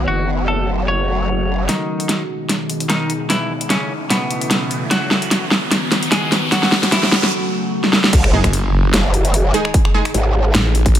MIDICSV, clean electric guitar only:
0, 0, Header, 1, 2, 480
1, 0, Start_track
1, 0, Tempo, 402685
1, 92, Time_signature, 4, 2, 24, 8
1, 13110, End_track
2, 0, Start_track
2, 0, Title_t, "Clean electric guitar"
2, 0, Program_c, 0, 27
2, 92, Note_on_c, 0, 66, 87
2, 353, Note_off_c, 0, 66, 0
2, 572, Note_on_c, 0, 69, 85
2, 833, Note_off_c, 0, 69, 0
2, 1052, Note_on_c, 0, 73, 92
2, 1924, Note_off_c, 0, 73, 0
2, 2011, Note_on_c, 0, 51, 80
2, 2015, Note_on_c, 0, 63, 75
2, 2644, Note_off_c, 0, 51, 0
2, 2644, Note_off_c, 0, 63, 0
2, 3450, Note_on_c, 0, 51, 80
2, 3455, Note_on_c, 0, 63, 82
2, 3712, Note_off_c, 0, 51, 0
2, 3712, Note_off_c, 0, 63, 0
2, 3931, Note_on_c, 0, 52, 75
2, 3936, Note_on_c, 0, 64, 75
2, 4193, Note_off_c, 0, 52, 0
2, 4193, Note_off_c, 0, 64, 0
2, 4410, Note_on_c, 0, 49, 73
2, 4416, Note_on_c, 0, 61, 78
2, 4673, Note_off_c, 0, 49, 0
2, 4673, Note_off_c, 0, 61, 0
2, 4891, Note_on_c, 0, 47, 79
2, 4894, Note_on_c, 0, 59, 73
2, 5764, Note_off_c, 0, 47, 0
2, 5764, Note_off_c, 0, 59, 0
2, 5848, Note_on_c, 0, 54, 84
2, 5856, Note_on_c, 0, 66, 87
2, 6483, Note_off_c, 0, 54, 0
2, 6484, Note_off_c, 0, 66, 0
2, 7290, Note_on_c, 0, 56, 75
2, 7296, Note_on_c, 0, 68, 80
2, 7553, Note_off_c, 0, 56, 0
2, 7553, Note_off_c, 0, 68, 0
2, 7772, Note_on_c, 0, 54, 76
2, 7777, Note_on_c, 0, 66, 80
2, 8033, Note_off_c, 0, 54, 0
2, 8033, Note_off_c, 0, 66, 0
2, 8250, Note_on_c, 0, 52, 73
2, 8257, Note_on_c, 0, 64, 85
2, 8513, Note_off_c, 0, 52, 0
2, 8513, Note_off_c, 0, 64, 0
2, 13110, End_track
0, 0, End_of_file